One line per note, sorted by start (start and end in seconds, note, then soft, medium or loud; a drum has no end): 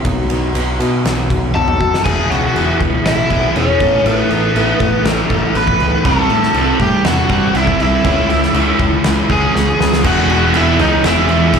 0.04 0.53 B1 medium
0.04 0.55 B2 medium
0.04 0.53 F#3 medium
0.04 0.30 B3 medium
0.04 0.29 D#4 medium
0.04 0.28 F#4 medium
0.04 kick loud
0.04 ride medium
0.29 0.54 B3 medium
0.29 0.54 D#4 medium
0.29 0.55 F#4 medium
0.29 ride medium
0.54 0.79 B1 medium
0.54 1.03 F#3 medium
0.54 0.80 B3 medium
0.54 0.79 D#4 medium
0.54 0.78 F#4 medium
0.54 ride medium
0.79 1.04 B2 medium
0.79 1.04 B3 medium
0.79 1.04 D#4 medium
0.79 1.05 F#4 medium
0.79 ride medium
1.04 1.29 B1 medium
1.04 1.80 B2 medium
1.04 1.53 F#3 medium
1.04 1.53 B3 medium
1.04 1.54 D#4 medium
1.04 1.54 F#4 medium
1.04 snare loud
1.04 ride medium
1.30 1.53 B1 medium
1.30 kick medium
1.30 ride medium
1.54 1.79 B1 medium
1.54 2.03 F#3 medium
1.54 1.80 B3 medium
1.54 1.79 D#4 medium
1.54 1.78 F#4 medium
1.54 2.02 A4 medium
1.54 2.04 A5 medium
1.54 high tom soft
1.68 mid tom medium
1.79 2.04 F#2 medium
1.79 2.04 B3 medium
1.79 2.04 D#4 medium
1.79 2.03 F#4 medium
1.79 kick medium
1.94 snare medium
2.04 2.22 E1 medium
2.04 2.28 E2 medium
2.04 2.29 B2 medium
2.04 2.54 E3 medium
2.04 2.29 E3 medium
2.04 2.54 F#3 medium
2.04 2.55 B3 medium
2.04 2.55 E4 medium
2.04 2.28 G#4 medium
2.04 2.55 G#4 medium
2.04 2.31 G#5 medium
2.04 kick loud
2.04 crash loud
2.04 crash medium
2.30 2.47 C#2 medium
2.30 2.53 E2 medium
2.30 2.53 B2 medium
2.30 2.77 F#4 medium
2.30 2.77 F#5 medium
2.30 crash medium
2.54 2.71 E1 medium
2.54 2.79 E2 medium
2.54 2.79 B2 medium
2.54 3.58 E3 medium
2.54 2.79 E3 medium
2.54 3.05 F#3 medium
2.54 2.81 B3 medium
2.54 2.81 E4 medium
2.54 2.79 G#4 medium
2.54 crash medium
2.80 2.97 C#2 medium
2.80 3.03 E2 medium
2.80 3.03 B2 medium
2.80 3.31 B3 medium
2.80 3.30 E4 medium
2.80 3.28 G#4 medium
2.80 kick medium
2.80 crash medium
3.05 3.22 A1 medium
3.05 3.28 E2 medium
3.05 3.28 B2 medium
3.05 3.53 E4 medium
3.05 3.53 E5 medium
3.05 snare loud
3.05 crash medium
3.29 3.47 B1 medium
3.29 3.54 E2 medium
3.29 3.54 B2 medium
3.29 3.55 E3 medium
3.29 3.54 B3 soft
3.29 3.56 E4 medium
3.29 3.56 G#4 medium
3.29 kick medium
3.29 crash medium
3.55 3.72 E1 medium
3.55 3.77 E2 medium
3.55 3.78 B2 medium
3.55 3.79 F#3 medium
3.55 3.79 B3 medium
3.55 4.02 C#4 medium
3.55 3.80 E4 medium
3.55 3.80 G#4 medium
3.55 4.06 C#5 medium
3.55 crash medium
3.80 3.97 A1 medium
3.80 4.03 A2 medium
3.80 4.04 E3 medium
3.80 4.04 A3 medium
3.80 4.05 B3 medium
3.80 4.05 E4 medium
3.80 4.06 A4 medium
3.80 kick loud
3.80 crash medium
4.04 4.21 A1 medium
4.04 4.28 A2 medium
4.04 4.29 E3 medium
4.04 4.53 A3 medium
4.04 4.29 A3 medium
4.04 4.54 B3 medium
4.04 5.52 B3 medium
4.04 4.55 E4 medium
4.04 4.55 A4 loud
4.04 5.09 B4 medium
4.04 crash medium
4.30 4.47 A1 medium
4.30 4.52 A2 medium
4.30 4.53 E3 medium
4.30 crash medium
4.54 4.72 A1 medium
4.54 4.79 A2 medium
4.54 4.79 E3 medium
4.54 5.05 A3 medium
4.54 4.79 A3 medium
4.54 4.81 B3 medium
4.54 4.80 E4 loud
4.54 4.78 A4 loud
4.54 crash medium
4.80 4.97 A1 medium
4.80 5.02 A2 medium
4.80 5.03 E3 medium
4.80 5.30 B3 medium
4.80 5.29 E4 medium
4.80 5.28 A4 medium
4.80 kick medium
4.80 crash medium
5.05 5.22 A1 medium
5.05 5.27 A2 medium
5.05 5.28 E3 medium
5.05 snare loud
5.05 crash medium
5.09 5.55 A4 medium
5.29 5.47 A1 medium
5.29 5.53 A2 medium
5.29 5.53 E3 medium
5.29 5.54 A3 medium
5.29 5.54 B3 medium
5.29 5.54 E4 medium
5.29 5.55 A4 medium
5.29 kick medium
5.29 crash medium
5.54 5.71 A1 medium
5.54 5.77 A2 medium
5.54 5.77 E3 medium
5.54 6.03 A3 medium
5.54 6.03 B3 medium
5.54 6.04 E4 medium
5.54 6.04 A4 medium
5.54 6.02 B4 medium
5.54 6.06 B5 loud
5.54 crash medium
5.67 kick medium
5.80 5.96 C#2 medium
5.80 6.02 A2 medium
5.80 6.02 E3 medium
5.80 crash soft
6.04 6.22 C2 medium
6.04 6.28 C3 medium
6.04 6.29 G3 medium
6.04 6.29 C4 medium
6.04 6.76 A4 medium
6.04 6.77 A5 loud
6.04 kick loud
6.04 crash medium
6.30 6.46 A2 medium
6.30 6.52 C3 medium
6.30 6.53 G3 medium
6.30 crash medium
6.43 snare soft
6.54 6.71 C2 medium
6.54 6.78 C3 medium
6.54 6.78 G3 medium
6.54 6.78 C4 medium
6.54 crash medium
6.79 6.96 A2 medium
6.79 7.02 C3 medium
6.79 7.02 G3 medium
6.79 7.04 G4 medium
6.79 7.06 G5 medium
6.79 kick medium
6.79 crash medium
7.05 7.22 E2 loud
7.05 7.27 C3 medium
7.05 7.27 G3 medium
7.05 7.51 F#4 medium
7.05 7.57 F#5 medium
7.05 snare loud
7.05 crash medium
7.29 7.46 G2 medium
7.29 7.53 C3 medium
7.29 7.53 G3 medium
7.29 7.54 C4 medium
7.29 kick medium
7.29 crash medium
7.54 7.71 C2 medium
7.54 7.77 C3 medium
7.54 7.77 G3 medium
7.54 7.79 E4 medium
7.54 7.81 E5 medium
7.54 crash medium
7.67 kick medium
7.79 7.96 C2 medium
7.79 8.02 C3 medium
7.79 8.02 G3 medium
7.79 9.51 E4 medium
7.79 9.51 E5 medium
7.79 crash medium
8.03 8.21 C#2 medium
8.03 8.28 C#3 medium
8.03 8.28 G#3 medium
8.03 8.28 C#4 medium
8.03 kick loud
8.03 crash medium
8.29 8.46 C#2 medium
8.29 8.52 C#3 medium
8.29 8.52 G#3 medium
8.29 crash medium
8.43 snare soft
8.54 8.71 C#2 medium
8.54 8.78 C#3 medium
8.54 8.78 G#3 medium
8.54 8.78 C#4 medium
8.54 crash medium
8.79 8.96 C#2 medium
8.79 9.02 C#3 medium
8.79 9.02 G#3 medium
8.79 kick medium
8.79 crash medium
9.04 9.21 C#2 medium
9.04 9.27 C#3 medium
9.04 9.27 G#3 medium
9.04 snare loud
9.04 crash medium
9.29 9.46 C#2 medium
9.29 9.52 C#3 medium
9.29 9.52 G#3 medium
9.29 9.53 C#4 medium
9.29 10.01 G#4 medium
9.29 10.06 G#5 loud
9.29 kick medium
9.29 crash medium
9.53 9.71 C#2 medium
9.53 9.76 C#3 medium
9.53 9.76 G#3 medium
9.53 snare medium
9.78 10.06 C#2 medium
9.78 10.01 C#3 medium
9.78 10.01 G#3 medium
9.78 snare medium
9.93 snare medium
10.03 10.51 E1 loud
10.03 11.02 E3 medium
10.03 10.51 G#3 medium
10.03 10.31 B3 loud
10.03 10.29 E4 loud
10.03 10.51 F#4 medium
10.03 10.27 G#4 medium
10.03 10.51 F#5 medium
10.03 kick loud
10.03 crash loud
10.03 crash medium
10.28 10.53 B3 medium
10.28 10.54 E4 medium
10.28 10.54 G#4 medium
10.28 crash medium
10.52 10.77 E1 medium
10.52 11.02 E3 medium
10.52 11.02 G#3 medium
10.52 11.03 B3 medium
10.52 11.04 E4 medium
10.52 11.04 G#4 medium
10.52 crash medium
10.56 10.78 E4 medium
10.56 10.78 E5 medium
10.78 11.02 C#2 medium
10.78 11.03 B3 medium
10.78 11.03 D#4 medium
10.78 11.04 E4 medium
10.78 11.05 G#4 medium
10.78 11.05 D#5 medium
10.78 crash medium
11.02 11.27 E1 loud
11.02 11.59 E3 medium
11.02 11.50 G#3 medium
11.02 11.29 B3 loud
11.02 11.29 E4 loud
11.02 11.59 E4 medium
11.02 11.26 G#4 loud
11.02 snare loud
11.02 crash medium
11.06 11.59 E5 medium
11.27 11.52 E2 medium
11.27 11.52 E3 medium
11.27 11.52 B3 medium
11.27 11.53 E4 medium
11.27 11.53 G#4 medium
11.27 crash medium
11.51 11.59 E1 medium
11.51 11.59 E3 medium
11.51 11.59 G#3 medium
11.51 11.59 B3 medium
11.51 11.59 E4 medium
11.51 11.59 G#4 medium
11.51 kick medium
11.51 crash medium